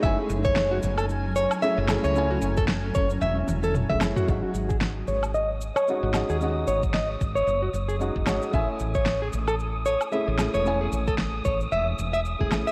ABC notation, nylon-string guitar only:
X:1
M:4/4
L:1/16
Q:"Swing 16ths" 1/4=113
K:none
V:1 name="Nylon-string guitar"
e z2 ^c2 ^F z A z2 c z e z2 c- | ^c ^F z A z2 c z e z2 A z e z F | z ^F z ^G z2 ^c z ^d z2 c2 F z G | z2 ^c z ^d z2 c2 ^F z ^G z2 c z |
e z2 ^c2 ^G z A z2 c z e z2 c- | ^c ^G z A z2 c z e z2 e z G z e |]